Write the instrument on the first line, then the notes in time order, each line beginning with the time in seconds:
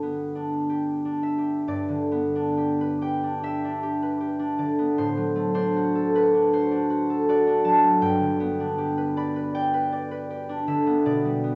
harp
Already playing: G2 D3 D4 G4 A4
0.03 B3
0.35 D4
0.70 G4
1.05 D4
1.23 E5
1.38 G4
1.68 G2 D5
1.89 D3
2.12 B3
2.35 D4
2.57 G4
2.81 B4
3.01 G4 G5
3.23 D4
3.43 G4 E5
3.64 D4
3.83 G4
4.02 B4
4.20 G4
4.39 D4
4.58 D3 D5
4.78 B3
4.98 A2 C5
5.17 F#3
5.36 A3
5.54 D4 C5
5.76 F#4
5.95 A4
6.15 F#4 B4
6.34 D4
6.53 F#4 C5
6.71 D4
6.90 F#4
7.10 A4
7.29 F#4 D5
7.47 D4
7.64 F#3 A5
7.83 A3
8.01 G2 G5
8.20 D3
8.40 B3
8.60 D4
8.78 G4
8.98 B4
9.17 D5 B5
9.36 B4
9.55 D5 G5
9.74 B4
9.93 D5
10.11 B4
10.30 G4
10.49 D4
10.67 D3 E5
10.86 B3
11.05 B2 D5
11.25 G3
11.44 B3